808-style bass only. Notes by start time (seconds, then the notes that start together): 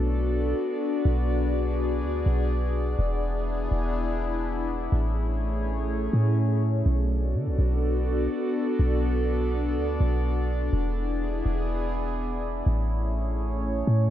Already playing: B1
1.05 B1
2.02 D2
2.26 B1
2.99 E1
3.71 E1
4.92 A1
6.13 A2
6.86 B1
7.34 D3
7.46 B1
7.59 B1
8.79 B1
9.76 D2
10.00 B1
10.73 E1
11.46 E1
12.66 A1
13.87 A2